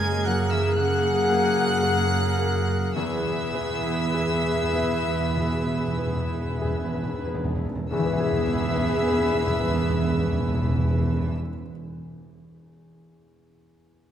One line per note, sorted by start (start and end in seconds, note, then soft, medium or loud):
0.00 0.73 F#2 medium
0.00 0.75 F#2 medium
0.00 2.92 F#2 medium
0.00 1.01 C#3 medium
0.00 0.26 G#3 loud
0.00 2.45 G#3 medium
0.00 0.28 A#3 medium
0.00 2.78 A#3 loud
0.00 2.92 A#3 medium
0.00 0.50 C#4 medium
0.00 0.25 G#4 medium
0.00 0.57 G#4 medium
0.00 0.76 G#4 medium
0.00 2.78 G#4 loud
0.00 2.95 G#4 medium
0.00 0.75 A#4 medium
0.00 2.08 A#4 medium
0.00 1.81 C#5 medium
0.00 0.25 G#5 loud
0.00 0.28 G#5 loud
0.00 0.25 G#6 loud
0.25 0.51 F#3 medium
0.25 1.08 A#3 medium
0.25 1.53 G#4 medium
0.25 0.51 F#5 medium
0.25 0.54 F#5 medium
0.25 0.51 F#6 loud
0.50 0.76 E3 medium
0.50 1.28 C#4 medium
0.50 0.76 E5 loud
0.50 0.79 E5 medium
0.50 0.76 E6 loud
0.74 3.01 F#2 medium
0.74 1.62 C#3 medium
0.74 2.96 F#3 medium
0.74 2.92 A#4 medium
0.74 2.96 F#5 loud
0.74 2.95 F#6 loud
0.78 2.94 G#4 medium
0.78 2.63 F#5 loud
1.02 3.01 C#3 medium
1.29 2.17 A#3 medium
1.29 2.65 C#4 medium
1.54 2.36 G#4 medium
1.82 2.73 G#4 medium
1.82 3.01 C#5 medium
2.10 3.00 A#4 medium
2.38 2.96 A#3 medium
2.38 3.82 G#4 medium
2.66 3.00 C#4 medium
2.95 5.33 E2 medium
2.95 7.64 E2 medium
2.95 5.33 E2 medium
2.95 3.04 E2 soft
2.95 7.26 E3 medium
2.95 7.60 B3 medium
2.95 7.44 B3 medium
2.95 7.44 G#4 medium
2.95 7.60 G#4 medium
2.95 7.46 B4 medium
2.95 7.22 E5 loud
2.95 7.22 E5 medium
2.95 7.22 E6 loud
3.05 3.14 E2 soft
3.15 3.23 E2 soft
3.24 3.32 E2 soft
3.24 5.65 B2 medium
3.33 3.41 E2 soft
3.42 3.50 E2 soft
3.51 3.59 E2 soft
3.51 4.51 B3 medium
3.51 5.03 E4 medium
3.60 3.68 E2 soft
3.69 3.77 E2 medium
3.78 3.86 E2 soft
3.83 4.73 G#4 medium
3.88 3.96 E2 medium
3.98 4.06 E2 medium
4.07 4.15 E2 medium
4.13 4.25 E2 medium
4.13 5.12 G#4 medium
4.13 6.59 E5 medium
4.26 4.34 E2 medium
4.35 4.43 E2 medium
4.44 4.53 E2 medium
4.44 6.91 B4 medium
4.54 4.63 E2 medium
4.64 4.71 E2 medium
4.73 4.80 E2 medium
4.73 5.74 B3 medium
4.73 6.27 G#4 medium
4.82 4.90 E2 medium
4.91 5.00 E2 medium
5.01 5.09 E2 medium
5.01 5.96 E4 medium
5.10 5.19 E2 medium
5.20 5.29 E2 medium
5.30 5.38 E2 medium
5.34 7.89 E2 medium
5.34 6.36 B2 medium
5.40 5.48 E2 medium
5.49 5.57 E2 medium
5.58 5.67 E2 medium
5.66 5.77 E2 medium
5.66 7.96 B2 medium
5.78 5.86 E2 medium
5.87 5.96 E2 medium
5.97 6.05 E2 medium
5.97 7.00 B3 medium
5.97 7.57 E4 medium
6.07 6.15 E2 medium
6.16 6.25 E2 medium
6.26 6.34 E2 medium
6.26 7.24 G#4 medium
6.35 6.44 E2 medium
6.45 6.53 E2 medium
6.55 6.63 E2 medium
6.60 7.66 G#4 medium
6.60 8.24 E5 medium
6.64 6.73 E2 loud
6.74 6.83 E2 loud
6.84 6.93 E2 loud
6.92 7.02 E2 loud
6.92 10.82 B4 medium
7.03 7.12 E2 loud
7.13 7.23 E2 loud
7.24 7.34 E2 loud
7.24 7.92 B3 medium
7.24 8.17 G#4 medium
7.35 7.43 E2 loud
7.44 7.54 E2 loud
7.55 7.64 E2 loud
7.55 8.10 E4 medium
7.65 7.74 E2 loud
7.75 7.84 E2 loud
7.90 11.80 E2 medium
7.90 7.98 E2 loud
7.90 11.33 E2 medium
7.90 11.31 E3 medium
7.90 11.33 B3 medium
7.90 11.32 G#4 medium
7.90 11.32 G#4 loud
7.90 11.32 G#4 medium
7.90 11.34 B4 medium
7.90 11.32 E5 loud
7.90 11.33 E5 loud
7.90 11.32 E6 loud
7.98 8.05 E2 loud
7.98 11.88 E3 medium
7.98 11.41 E3 medium
8.04 8.12 E2 loud
8.04 11.46 B3 medium
8.04 11.47 B3 medium
8.11 8.19 E2 medium
8.11 11.53 E4 medium
8.11 11.55 E4 medium
8.18 8.26 E2 loud
8.18 11.59 G#4 medium
8.18 11.61 G#4 medium
8.25 8.33 E2 loud
8.25 11.67 E5 medium
8.25 11.69 E5 medium
8.33 8.40 E2 loud
8.40 8.47 E2 loud
8.47 8.54 E2 loud
8.55 8.62 E2 loud
8.62 8.68 E2 loud
8.68 8.75 E2 loud
8.76 8.83 E2 loud
8.83 8.90 E2 loud
8.90 8.97 E2 loud
8.97 9.04 E2 loud
9.04 9.11 E2 loud
9.11 9.18 E2 loud
9.18 9.25 E2 loud
9.25 9.32 E2 medium
9.32 9.39 E2 loud
9.40 9.47 E2 loud
9.47 9.54 E2 loud
9.54 9.61 E2 loud
9.61 9.68 E2 loud
9.68 9.75 E2 loud
9.75 9.82 E2 loud
9.82 9.89 E2 loud
9.89 9.97 E2 loud
9.97 10.04 E2 loud
10.04 10.11 E2 loud
10.11 10.18 E2 medium
10.18 10.25 E2 loud
10.25 10.32 E2 loud
10.32 10.40 E2 loud
10.40 10.48 E2 medium
10.48 10.55 E2 loud
10.55 10.62 E2 loud
10.62 10.69 E2 loud
10.69 10.76 E2 loud
10.76 10.83 E2 loud
10.83 10.90 E2 medium
10.90 10.98 E2 loud
10.98 11.05 E2 medium
11.06 11.13 E2 loud
11.13 11.20 E2 loud
11.20 11.27 E2 loud
11.28 11.35 E2 loud